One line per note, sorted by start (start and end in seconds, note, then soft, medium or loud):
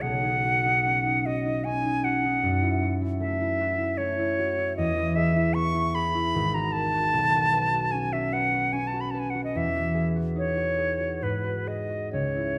0.00 2.47 B1 soft
0.00 0.22 D#4 soft
0.00 1.27 F#5 medium
0.23 0.64 D#4 soft
0.44 1.25 F#4 soft
0.66 1.05 D#4 soft
0.86 1.64 C#4 soft
1.06 1.45 D#4 soft
1.26 2.04 F#4 soft
1.26 1.66 D#5 medium
1.46 1.84 D#4 soft
1.64 4.80 C#4 soft
1.64 2.06 G#5 medium
1.85 2.24 D#4 soft
2.04 2.82 F#4 soft
2.04 2.94 F#5 medium
2.25 2.47 D#4 soft
2.43 4.80 F#2 soft
2.62 3.00 E4 soft
2.83 3.59 F#4 soft
3.01 3.39 E4 soft
3.20 3.98 A3 soft
3.20 3.99 E5 medium
3.41 3.78 E4 soft
3.61 4.38 F#4 soft
3.79 4.18 E4 soft
3.98 4.81 A3 soft
3.98 4.76 C#5 medium
4.19 4.57 E4 soft
4.39 4.81 F#4 soft
4.58 4.95 E4 soft
4.77 6.38 E2 medium
4.77 5.17 D#5 medium
4.97 5.35 E4 soft
5.15 5.94 G#4 soft
5.15 5.56 E5 medium
5.36 5.73 E4 soft
5.54 9.45 B3 soft
5.54 5.96 C#6 medium
5.74 6.14 E4 soft
5.95 7.16 G#4 soft
5.95 6.56 B5 medium
6.15 6.37 E4 soft
6.35 7.16 G#1 medium
6.54 6.93 F#4 soft
6.54 6.74 A#5 medium
6.72 7.17 A#4 soft
6.72 7.93 A5 medium
6.94 7.32 F#4 soft
7.13 9.57 B1 soft
7.34 7.72 F#4 soft
7.54 8.32 B4 soft
7.73 8.12 F#4 soft
7.92 8.72 C#4 soft
7.92 8.14 G#5 medium
8.13 8.52 F#4 soft
8.13 8.35 E5 medium
8.33 9.13 B4 soft
8.33 8.74 F#5 medium
8.53 8.93 F#4 soft
8.73 9.57 C#4 soft
8.73 8.89 G#5 medium
8.87 9.02 A5 medium
8.94 9.34 F#4 soft
9.01 9.12 B5 medium
9.11 12.58 B4 soft
9.11 9.21 A5 medium
9.19 9.32 G#5 medium
9.30 9.42 F#5 medium
9.35 9.74 F#4 soft
9.44 9.58 D#5 medium
9.55 11.26 E2 soft
9.55 10.09 E5 medium
9.75 10.14 F#4 soft
9.95 10.77 G#4 soft
10.16 10.56 F#4 soft
10.36 12.17 D#4 soft
10.36 11.24 C#5 medium
10.57 10.99 F#4 soft
10.78 11.65 G#4 soft
11.00 11.43 F#4 soft
11.22 12.17 G#2 soft
11.22 11.69 B4 medium
11.44 11.88 F#4 soft
11.66 12.58 G#4 soft
11.66 12.12 D#5 medium
11.89 12.17 F#4 soft
12.13 12.58 C#2 soft
12.13 12.58 C#5 medium
12.36 12.58 E4 soft